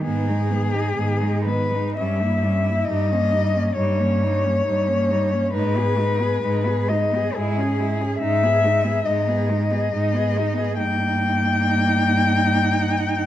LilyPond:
<<
  \new Staff \with { instrumentName = "Cello" } { \time 3/4 \key gis \minor \tempo 4 = 69 gis'4. b'8 e''4 | dis''4 cis''2 | b'4. dis''8 gis'4 | e''4 dis''2 |
g''2. | }
  \new Staff \with { instrumentName = "Cello" } { \time 3/4 \key gis \minor b16 dis'16 b16 dis'16 b16 dis'16 b16 dis'16 des'16 e'16 des'16 e'16 | dis'16 cis'16 dis'16 cis'16 dis'16 cis'16 dis'16 cis'16 dis'16 cis'16 dis'16 cis'16 | dis'16 gis'16 dis'16 gis'16 dis'16 gis'16 dis'16 gis'16 e'16 gis'16 e'16 gis'16 | dis'16 gis'16 dis'16 gis'16 dis'16 gis'16 dis'16 gis'16 dis'16 gis'16 dis'16 gis'16 |
dis'2. | }
  \new Staff \with { instrumentName = "Cello" } { \clef bass \time 3/4 \key gis \minor dis16 gis16 dis16 gis16 dis16 gis16 dis16 gis16 g16 bes16 g16 bes16 | g16 ais16 g16 ais16 g16 ais16 g16 ais16 g16 ais16 g16 ais16 | gis16 b16 gis16 b16 gis16 b16 gis16 b16 gis16 cis'16 gis16 cis'16 | gis16 b16 gis16 b16 gis16 b16 gis16 b16 gis16 b16 gis16 b16 |
ais2. | }
  \new Staff \with { instrumentName = "Cello" } { \clef bass \time 3/4 \key gis \minor gis,4 gis,4 g,4 | g,4 g,4 g,4 | gis,4 gis,4 gis,4 | gis,4 gis,4 gis,4 |
g,2. | }
>>